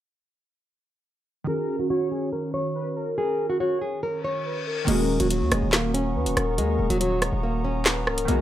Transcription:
1.44 synth keys D#3 C#4, nylon-string guitar G#4, soft synth lead A#4
1.51 synth keys F#4
1.79 nylon-string guitar F#4
1.90 nylon-string guitar F#4, soft synth lead C#5
2.12 nylon-string guitar G#4
2.33 nylon-string guitar A#4
2.54 nylon-string guitar C#5
2.75 soft synth lead B4
2.96 soft synth lead A#4
3.18 nylon-string guitar G#4, soft synth lead A#4
3.50 nylon-string guitar F#4
3.60 nylon-string guitar F#4, soft synth lead C#5
3.81 nylon-string guitar G#4
4.03 nylon-string guitar A#4, reverse cymbal
4.24 nylon-string guitar C#5
4.46 soft synth lead B4
4.67 soft synth lead A#4
4.85 808-style bass D#1, synth keys D#3 A#3, nylon-string guitar G#3, soft synth lead A#4, analog synth pad F#5 A#5 C#6 D#6, closed hi-hat, crash
4.89 synth keys C#4 F#4
5.20 808-style bass D#1, nylon-string guitar F#3, closed hi-hat
5.30 nylon-string guitar F#3, soft synth lead C#5, closed hi-hat
5.41 808-style bass D#2
5.52 808-style bass D#1, nylon-string guitar G#3, cross-stick, closed hi-hat
5.62 808-style bass D#1
5.73 nylon-string guitar A#3, snare, clap
5.94 nylon-string guitar C#4, closed hi-hat
6.16 808-style bass D#2, soft synth lead B4
6.26 808-style bass D#1, closed hi-hat
6.37 808-style bass D#1, soft synth lead A#4, cross-stick, closed hi-hat
6.58 808-style bass D#2, nylon-string guitar G#3, soft synth lead A#4, closed hi-hat
6.79 808-style bass D#1
6.90 808-style bass D#1, nylon-string guitar F#3, closed hi-hat
7.00 nylon-string guitar F#3, soft synth lead C#5, closed hi-hat
7.22 nylon-string guitar G#3, cross-stick, closed hi-hat
7.33 808-style bass D#1
7.43 nylon-string guitar A#3
7.65 nylon-string guitar C#4
7.85 soft synth lead B4, snare, clap, closed hi-hat
8.07 808-style bass C#1, soft synth lead A#4, cross-stick
8.18 closed hi-hat
8.25 808-style bass B1, synth keys D#3 A#3, nylon-string guitar G#3, analog synth pad F#5, closed hi-hat
8.29 synth keys B3 F#4

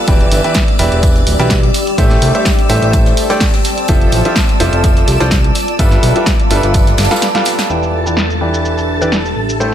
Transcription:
Already playing: ambient pad B3 A5, string machine D5 E6
0.07 analog synth bass E1, grand piano E3 G4 B4 D5 E5, ambient pad D4, kick, closed hi-hat, tambourine
0.14 ambient pad G4
0.20 closed hi-hat
0.31 analog synth bass G1, open hi-hat, tambourine
0.44 grand piano E3 G4 B4 D5 E5, closed hi-hat
0.54 kick, snare, closed hi-hat, tambourine
0.68 closed hi-hat
0.79 analog synth bass E1, grand piano E3 G4 B4 D5 E5, open hi-hat, tambourine
0.83 ambient pad B5
0.92 analog synth bass E1, closed hi-hat
1.03 kick, closed hi-hat, tambourine
1.16 snare, closed hi-hat
1.27 analog synth bass D1, open hi-hat, tambourine
1.39 analog synth bass B1, grand piano E3 G4 B4 D5 E5, snare, closed hi-hat
1.50 kick, snare, closed hi-hat, tambourine
1.63 closed hi-hat
1.74 ambient pad C4, snare, open hi-hat, tambourine
1.87 closed hi-hat
1.98 analog synth bass A1, grand piano A3 G4 A4 C5 E5, kick, closed hi-hat, tambourine
2.06 ambient pad A5
2.10 snare, closed hi-hat
2.22 analog synth bass C2, open hi-hat, tambourine
2.35 grand piano A3 G4 A4 C5 E5, closed hi-hat
2.45 kick, snare, closed hi-hat, tambourine
2.59 closed hi-hat
2.69 analog synth bass A1, grand piano A3 G4 A4 C5 E5, open hi-hat, tambourine
2.82 analog synth bass A1, closed hi-hat
2.93 kick, closed hi-hat, tambourine
3.06 snare, closed hi-hat
3.17 open hi-hat, tambourine
3.30 grand piano A3 G4 A4 C5 D5, snare, closed hi-hat
3.40 kick, snare, closed hi-hat, open hi-hat
3.53 snare, closed hi-hat
3.64 snare, open hi-hat, tambourine
3.78 closed hi-hat
3.88 analog synth bass F1, grand piano F3 F4 A4 C5 E5, kick, closed hi-hat, tambourine
4.01 closed hi-hat
4.08 ambient pad F4
4.12 analog synth bass A1, open hi-hat, tambourine
4.25 grand piano F3 F4 A4 C5 E5, closed hi-hat
4.36 kick, snare, closed hi-hat, tambourine
4.49 closed hi-hat
4.60 analog synth bass F1, grand piano F3 F4 A4 C5 E5, open hi-hat, tambourine
4.73 analog synth bass F1, closed hi-hat
4.84 kick, closed hi-hat, tambourine
4.96 snare, closed hi-hat
5.08 analog synth bass C2, open hi-hat, tambourine
5.20 analog synth bass C2, grand piano F3 F4 A4 C5 D5, snare, closed hi-hat
5.31 kick, snare, closed hi-hat, tambourine
5.44 closed hi-hat
5.55 ambient pad B3, snare, open hi-hat, tambourine
5.68 closed hi-hat
5.79 analog synth bass G1, grand piano G3 F4 A4 B4 E5, kick, closed hi-hat, tambourine
5.91 snare, closed hi-hat
6.03 analog synth bass B1, open hi-hat, tambourine
6.16 grand piano G3 F4 A4 B4 E5, closed hi-hat
6.26 kick, snare, closed hi-hat, tambourine
6.40 closed hi-hat
6.50 analog synth bass G1, grand piano G3 F4 A4 B4 E5, open hi-hat, tambourine
6.63 analog synth bass G1, closed hi-hat
6.74 kick, closed hi-hat, tambourine
6.87 snare, closed hi-hat
6.98 analog synth bass G1, snare, open hi-hat, tambourine
7.04 snare, tambourine
7.11 grand piano G3 F4 A4 B4 F5, snare, closed hi-hat, tambourine
7.16 snare, tambourine
7.21 snare, closed hi-hat, tambourine
7.35 grand piano G3 F4 A4 B4 F5, snare, closed hi-hat
7.45 snare, open hi-hat, tambourine
7.59 snare, closed hi-hat, tambourine
7.70 analog synth bass E1, grand piano E3 E4 G4 B4 D5, ambient pad D4, string machine A4 A5, cabasa
7.83 ambient pad G4, cabasa
8.06 grand piano E3 E4 G4 B4 D5, cabasa
8.17 snare, cabasa
8.30 cabasa
8.41 grand piano E3 E4 G4 B4 D5, ambient pad E5 B5
8.54 cabasa
8.65 cabasa
8.78 cabasa
9.01 grand piano E3 E4 G4 B4 D5, synth pluck B4, cabasa
9.12 snare, cabasa
9.26 cabasa
9.36 analog synth bass A1
9.49 cabasa
9.60 grand piano A3 E4 G4 A4 C5, cabasa

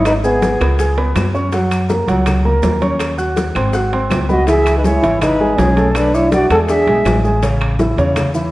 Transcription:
Already playing: upright bass G#1, grand piano D#4 D#5 D#6
0.05 trombone D#4, flute B4, high bongo, high conga, high timbale, claves, maracas
0.23 trombone B3, grand piano G#4 G#5 G#6, flute G#4, high conga, maracas
0.42 high bongo, high conga, high timbale, low timbale, maracas
0.60 upright bass C#2, grand piano B3 B4 B5, high timbale, claves, maracas
0.79 grand piano G#4 G#5 G#6, high bongo, high conga, maracas
0.97 grand piano B3 B4 B5, high bongo, high conga, high timbale
1.16 upright bass F#2, high bongo, low bongo, high conga, high timbale, low timbale, claves, maracas
1.34 grand piano C#4 C#5 C#6, high bongo, maracas
1.52 grand piano F#3 F#4 F#5, high bongo, high conga, high timbale, maracas
1.72 high conga, high timbale, claves, maracas
1.89 grand piano A#3 A#4 A#5, high bongo, high conga, low timbale, maracas
2.08 upright bass C#2, grand piano F#3 F#4 F#5, high bongo, high conga, high timbale, maracas
2.26 high bongo, high conga, low conga, high timbale, claves, maracas
2.45 grand piano A#3 A#4 A#5, high bongo, high conga, low conga
2.63 upright bass D#2, high bongo, low bongo, high conga, high timbale, low timbale, maracas
2.81 grand piano C#4 C#5 C#6, high bongo, high conga, high timbale, maracas
3.00 high bongo, high conga, high timbale, claves, maracas
3.18 grand piano F#4 F#5 F#6, high conga, maracas
3.37 high bongo, high conga, high timbale, low timbale, maracas
3.55 upright bass G#1, grand piano C4 C5 C6, high bongo, high conga, high timbale, claves, maracas
3.73 grand piano F#4 F#5 F#6, high bongo, high conga, maracas
3.92 grand piano C4 C5 C6, high bongo, high conga, high timbale
4.10 upright bass C#2, high bongo, low bongo, high conga, high timbale, low timbale, claves, maracas
4.29 grand piano B3 B4 B5, trombone F#4, flute D#5, high bongo, high conga, maracas
4.47 grand piano E3 E4 E5, trombone G#4, flute E5, high bongo, high conga, high timbale, maracas
4.66 high conga, high timbale, claves, maracas
4.77 trombone D#4, flute B4
4.84 grand piano G#3 G#4 G#5, trombone E4, flute C#5, high bongo, high conga, low timbale, maracas
5.03 upright bass G#1, grand piano E3 E4 E5, high bongo, high conga, high timbale, maracas
5.21 trombone D#4, flute B4, high bongo, high conga, low conga, high timbale, claves, maracas
5.40 grand piano G#3 G#4 G#5, high bongo, high conga
5.58 upright bass B1, trombone C#4, flute G#4, high bongo, low bongo, high conga, high timbale, low timbale, maracas
5.76 grand piano A3 A4 A5, high bongo, high conga, high timbale, maracas
5.92 trombone C#4, flute A4, high bongo, high timbale, claves
5.96 trombone D4, flute B4, maracas
6.14 grand piano D4 D5 D6, trombone E4, flute C#5, high conga, maracas
6.32 trombone F#4, flute D5, high bongo, high conga, high timbale, low timbale, maracas
6.49 upright bass E2, grand piano G#3 G#4 G#5, trombone A4, flute F#5, high bongo, high timbale, claves, maracas
6.68 grand piano D4 D5 D6, trombone G#4, flute E5, high bongo, high conga, maracas
6.87 upright bass B1, grand piano G#3 G#4 G#5, high bongo, high conga, high timbale
7.05 upright bass A1, high bongo, low bongo, high conga, high timbale, low timbale, claves, maracas
7.24 grand piano G#3 G#4 G#5, high bongo, maracas
7.43 grand piano C#3 C#4 C#5, high bongo, high conga, high timbale, maracas
7.61 high conga, high timbale, claves
7.79 grand piano E3 E4 E5, high bongo, high conga, low timbale, maracas
7.97 upright bass E2, grand piano C#3 C#4 C#5, high bongo, high conga, high timbale, maracas
8.16 high bongo, high conga, low conga, high timbale, claves, maracas
8.34 grand piano E3 E4 E5, high bongo, high conga, maracas

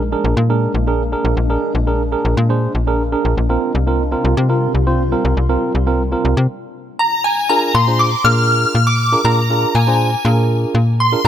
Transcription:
Already playing: fm bass A#1, ambient pad G#3 A#3 D4
0.12 tine electric piano D4 G#4 A#4
0.24 fm bass A#1
0.37 fm bass A#2
0.50 tine electric piano D4 G#4 A#4
0.74 fm bass A#1
0.87 tine electric piano D4 G#4 A#4
1.12 tine electric piano D4 G#4 A#4
1.25 fm bass A#1
1.37 fm bass A#1
1.50 tine electric piano D4 G#4 A#4
1.75 fm bass A#1
1.87 tine electric piano D4 G#4 A#4
2.12 tine electric piano D4 G#4 A#4
2.25 fm bass A#1
2.37 fm bass A#2
2.50 tine electric piano D4 G#4 C5
2.75 fm bass A#1
2.87 tine electric piano D4 G#4 A#4
3.12 tine electric piano D4 G#4 A#4
3.25 fm bass A#1
3.37 fm bass A#1
3.49 ambient pad C3 G3 F4, tine electric piano C4 F4 A#4
3.75 fm bass C2
3.87 tine electric piano C4 F4 A#4
4.12 tine electric piano C4 F4 A#4
4.25 fm bass C2
4.37 fm bass C3
4.49 tine electric piano C4 F4 A#4
4.75 fm bass C2
4.87 tine electric piano C4 F4 C5
5.12 tine electric piano C4 F4 A#4
5.25 fm bass C2
5.37 fm bass C2
5.49 tine electric piano C4 F4 A#4
5.75 fm bass C2
5.87 tine electric piano C4 F4 A#4
6.12 tine electric piano C4 F4 A#4
6.25 fm bass C2
6.37 fm bass C3
6.99 synth bell A#5
7.24 synth bell G#5
7.49 tine electric piano D4 F4 G#4 A#4, synth bell A#5
7.75 fm bass A#2, synth bell C6
7.87 tine electric piano D4 F4 G#4 C5
7.99 synth bell D6
8.24 fm bass A#2, tine electric piano D4 F4 G#4 A#4, synth bell F6
8.75 fm bass A#2
8.87 synth bell D6
9.12 tine electric piano D4 F4 G#4 A#4
9.25 fm bass A#2, tine electric piano D4 F4 G#4 A#4, synth bell A#5
9.50 tine electric piano D4 F4 G#4 A#4
9.75 fm bass A#2, synth bell G#5
9.87 tine electric piano D4 F4 G#4 C5
10.25 fm bass A#2, tine electric piano D4 F4 G#4 A#4
10.75 fm bass A#2
11.00 synth bell C6
11.12 tine electric piano D4 F4 G#4 A#4
11.24 fm bass A#2, tine electric piano D4 F4

